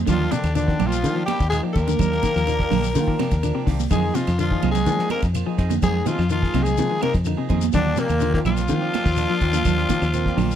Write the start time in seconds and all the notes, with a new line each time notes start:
0.07 D#2 D3 F3 A#3 D4 F4 G4, kick, snare, ride bell, low conga, claves, shekere
0.20 A#3 D4 G4
0.31 C3 D3 F3 A#3 D4 G4, snare, ride bell, high conga, shekere
0.44 D#2, snare, ride bell, claves, shekere
0.55 D3 F3 A#3 D4, ride bell, shekere
0.68 D#3 A#3 D4 G4, kick, snare
0.79 A#1 F3 A#3 D4 G4, ride bell, high conga, low conga, claves, shekere
0.86 F3 F4
0.92 ride bell, shekere
1.02 D#3 F3 A#3 D4, ride bell, shekere
1.16 F3 A#3 D4 G4
1.26 F3 G3 A#3 D4 G4, snare, ride bell, high conga, claves
1.40 D#2, kick, snare, ride bell, shekere
1.48 F3 G#3 G#4, ride bell, claves
1.52 A#3 D#4, shekere
1.63 F3 A#3 D4 G4
1.74 D#2 F3 A#3 D4 G4 A#4, kick, ride bell, shekere
1.87 D3, ride bell, high conga, shekere
1.99 D#2 F3 A#3 D4, kick, ride bell, low conga, claves, shekere
2.12 A#3 D4 G4, snare
2.23 D#3 F3 A#3 D4 G4, kick, snare, ride bell, high conga, shekere
2.36 D#2 F3, snare, claves, shekere
2.47 D#3 F3 A#3 D4, ride bell, shekere
2.60 D4 G4, kick, snare
2.71 A#1 D3 F3 A#3 D4 G4, open hi-hat, high conga, low conga, claves, shekere
2.84 shekere
2.94 D3 D#3 F3 A#3 F4, ride bell, high conga, shekere
3.08 D#3 A#3 D4 G4, kick
3.19 C3 F3 A#3 D4 G4, snare, ride bell, high conga, claves
3.31 D#2, kick, snare, ride bell, shekere
3.43 D3 F3 A#3 D4, ride bell, claves, shekere
3.55 C3 A#3 D4 G4
3.67 C2 D#3 F3 A#3 D4 G4, kick, snare, open hi-hat, shekere
3.79 high conga, shekere
3.90 F2 D3 F3 G#3 A#3 C4 D#4 G#4, kick, ride bell, low conga, claves, shekere
4.03 D#4 G#4
4.15 C3 F3 C4 D#4 F4 G#4, snare, ride bell, high conga, shekere
4.27 F2, snare, ride bell, claves, shekere
4.38 D3 F3 A#3 D4 F4, ride bell, shekere
4.51 D#3 D#4 G#4, kick
4.62 C2 C4 D#4 G#4, ride bell, high conga, low conga, claves, shekere
4.71 G#3 G#4, ride bell, shekere
4.75 low conga
4.85 D#3 F3 A#3 D4, ride bell, high conga, shekere
4.99 F3 D#4 G#4, snare
5.10 A#3 C4 D#4 G#4 A#4, ride bell, high conga, claves
5.22 F2, kick, snare, ride bell, shekere
5.34 F3 A#3 F4, ride bell, claves, shekere
5.47 F3 D#4 G#4
5.58 F2 C4 D#4 G#4, kick, snare, ride bell, shekere
5.70 D3, ride bell, high conga, shekere
5.81 F2 F3 G#3 A#3 D#4 G#4, kick, ride bell, low conga, claves, shekere
5.86 G#4
5.94 D#4 G#4
6.05 D#3 F3 C4 D#4 F4 G#4, ride bell, high conga, shekere
6.18 F2 F3, snare, claves, shekere
6.30 D#3 F3 A#3 D#4 F4, ride bell, shekere
6.42 D#4 G#4, kick, snare
6.54 C2 C3 C4 D#4 G#4, snare, ride bell, high conga, low conga, claves, shekere
6.60 G#3 G#4
6.66 low conga, shekere
6.77 C3 F3 A#3 D#4, ride bell, high conga, shekere
6.90 D#3 D#4 G#4
7.01 C3 A#3 C4 D#4 G#4 A#4, ride bell, high conga, claves
7.13 F2, kick, snare, ride bell, shekere
7.25 D3 F3 A#3 D#4, ride bell, claves, shekere
7.37 C3 D#4 G#4
7.49 F2 D#3 C4 D#4 G#4, kick, ride bell, high conga, shekere
7.61 high conga, shekere
7.72 D#2 D3 F3 A#3 D4 G4, kick, snare, ride bell, low conga, claves, shekere
7.76 D4
7.86 A#3 D4 G4
7.96 A#2 C3 F3 A#3 D4 G4, snare, ride bell, high conga, shekere
8.09 D#2, ride bell, high conga, claves, shekere
8.20 D3 F3 A#3 F4, ride bell, shekere
8.34 A#2 D#3 A#3 D4 G4, kick, snare
8.45 A#1 F3 A#3 D4 F4 G4, ride bell, high conga, low conga, claves, shekere
8.49 F4
8.57 snare, ride bell, low conga, shekere
8.68 D#3 F3 A#3 C4, ride bell, high conga, shekere
8.81 F3 A#3 D4 G4
8.93 F3 A#3 D4 G4, snare, ride bell, high conga, claves
9.05 D#2, kick, snare, ride bell, shekere
9.16 F3 A#3 D4, ride bell, claves, shekere
9.30 F3 A#3 D4
9.40 D#2 F3 A#3 D4 G4, kick, ride bell, shekere
9.53 D3, ride bell, high conga, shekere
9.63 D#2 F3 A#3 D4, kick, ride bell, low conga, claves, shekere
9.77 D4 G4, snare
9.89 D#3 F3 A#3 D4 G4, kick, snare, ride bell, high conga, shekere
10.02 D#2 F3, snare, claves, shekere
10.13 F3 A#3 C4, ride bell, shekere
10.26 A#3 D4 G4, kick, snare
10.37 A#1 D3 F3 A#3 D4 G4, open hi-hat, high conga, low conga, claves, shekere
10.51 shekere